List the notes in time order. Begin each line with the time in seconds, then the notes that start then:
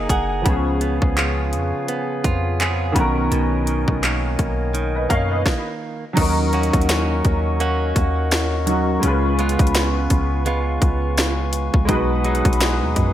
Already playing: F#3 A#3 D#4 G#4 D#5 G#5 A#5
0.09 F#1 G#4 F#5, kick, closed hi-hat
0.42 C#2 C#3 F3 B3 C#5 F5 G#5, kick, closed hi-hat
0.47 C#4 G#4
0.81 B3, closed hi-hat
1.02 C#2, kick
1.17 F4, clap, closed hi-hat
1.53 F2, closed hi-hat
1.88 B3, closed hi-hat
2.24 F2 F4, kick, closed hi-hat
2.60 B3 F4 G#4, clap, closed hi-hat
2.92 B1 B2 D#3 B3 A#4 D#5, kick, closed hi-hat
2.97 C#4 A#4
3.32 B1 B2, closed hi-hat
3.67 D#3, closed hi-hat
3.88 B1, kick
4.03 A#3, clap, closed hi-hat
4.39 B1, kick, closed hi-hat
4.74 D#3, closed hi-hat
4.95 B4 D#5
5.10 F#2 A#3 C#5 F5, kick, closed hi-hat
5.31 B4 D#5
5.46 kick, snare
6.13 D#3 F#3 C#4 A#4 D#5 F#5 C#6, kick, closed hi-hat, crash
6.17 D#2 D#4 A#4
6.53 A#3 C#4 F#4, closed hi-hat
6.63 closed hi-hat
6.73 D#2, kick, closed hi-hat
6.81 closed hi-hat
6.89 C#4, snare, closed hi-hat
7.25 D#2, kick, closed hi-hat
7.60 A#3 C#4 F#4, closed hi-hat
7.96 D#2, kick, closed hi-hat
8.31 snare, closed hi-hat
8.66 F#3 C#4 D#4 F#4, closed hi-hat
9.00 C#3 G#3 C#4 B4 F5 G#5, closed hi-hat
9.04 C#2 F4 B4
9.39 G#3 B3 F4, closed hi-hat
9.49 closed hi-hat
9.59 C#2, kick, closed hi-hat
9.67 closed hi-hat
9.75 B3, snare, closed hi-hat
10.10 C#2, kick, closed hi-hat
10.46 G#3 B3 F4, closed hi-hat
10.82 C#2, kick, closed hi-hat
11.18 snare, closed hi-hat
11.53 closed hi-hat
11.74 C#2, kick
11.85 B2 G#3 D#4 B4 F#5 G#5 D#6, kick, closed hi-hat
11.89 B1 F#4 B4
12.24 F#3 G#3 D#4, closed hi-hat
12.35 closed hi-hat
12.45 B1, kick, closed hi-hat
12.53 closed hi-hat
12.60 G#3, snare, closed hi-hat
12.82 D#2
12.96 F#2, kick, closed hi-hat